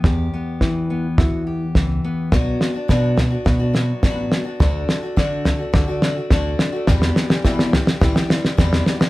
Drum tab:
SD |o---o---o---o---|o-o-o-o-o-o-o-o-|o-o-o-o-o-o-o-o-|oooooooooooooooo|
FT |o-------o-------|o-----o-o-------|o-----o-o-------|o-----o-o-------|
BD |o---o---o---o---|o---o---o---o---|o---o---o---o---|o---o---o---o---|